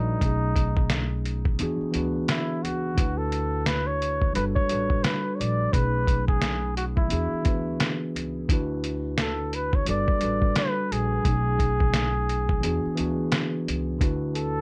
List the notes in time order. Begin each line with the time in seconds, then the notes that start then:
Already playing: A#1 G3 D4 D#4 F#4 A4 B4 D5
0.20 B1 B2 F#3 A3 C#4, kick, closed hi-hat
0.24 D#4 G#4
0.56 kick, closed hi-hat
0.77 kick
0.90 snare, closed hi-hat
1.25 closed hi-hat
1.45 kick
1.58 E2 E3 B3 D4 F#4, closed hi-hat
1.63 G#4
1.81 muted upright bass stroke
1.91 D2 E3 B3 D4 F#4, closed hi-hat
1.97 B4
2.28 E4, snare, closed hi-hat
2.63 C#2 F#4, closed hi-hat
2.94 D3 D4 E4 F#4, kick, closed hi-hat
2.99 D2 B4
3.18 A4
3.32 closed hi-hat
3.66 B4, snare, closed hi-hat
3.87 C#5
4.02 closed hi-hat
4.22 kick
4.33 G1 G3 D4 F#4 A4 B4, closed hi-hat
4.38 B4
4.55 C#5, kick
4.67 G3 D4 F#4, closed hi-hat
4.71 A1 A4 B4
4.90 kick
5.03 B4, snare, closed hi-hat
5.35 C#5 D5
5.40 A#1, closed hi-hat
5.71 B1 B2 F#3 A3 C#4 D#4 B4, kick, closed hi-hat
5.76 G#4
6.07 kick, closed hi-hat
6.28 G#4, kick
6.42 snare, closed hi-hat
6.76 F#4, closed hi-hat
6.96 E4, kick
7.07 E3 B3 D4 F#4, closed hi-hat
7.12 E2 G#4
7.33 muted upright bass stroke
7.43 D2 E3 B3 D4 F#4, kick, closed hi-hat
7.48 B4
7.80 snare, closed hi-hat
8.16 C#2, closed hi-hat
8.48 D2 D3 D4 E4 F#4, kick, closed hi-hat
8.53 B4
8.84 closed hi-hat
9.18 A4, snare, closed hi-hat
9.53 B4, closed hi-hat
9.73 C#5, kick
9.85 G1 G3 D4 F#4 A4, closed hi-hat
9.90 B4 D5
10.08 kick
10.20 A1 G3 D4 F#4 A4, closed hi-hat
10.25 B4
10.42 kick
10.56 B4, snare, closed hi-hat
10.92 A#1 G#4, closed hi-hat
11.23 B1 B2 F#3 A3 C#4, kick, closed hi-hat
11.28 D#4 G#4
11.59 kick, closed hi-hat
11.80 kick
11.94 snare, closed hi-hat
12.29 closed hi-hat
12.49 kick
12.61 E3 B3 D4, closed hi-hat
12.65 E2 F#4 G#4
12.85 muted upright bass stroke
12.95 D2 E3 B3 D4 F#4, closed hi-hat
13.00 B4
13.32 snare, closed hi-hat
13.68 C#2, closed hi-hat
13.99 D2 D3 D4 E4 F#4, kick, closed hi-hat
14.04 B4
14.35 A4, closed hi-hat